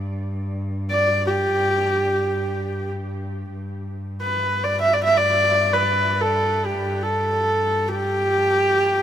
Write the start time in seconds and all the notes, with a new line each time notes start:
Already playing: G2
0.91 D5
1.27 G4
3.53 G2
4.21 B4
4.64 D5
4.81 E5
4.93 D5
5.04 E5
5.17 D5
5.73 B4
6.21 A4
6.65 G4
7.03 A4
7.89 G4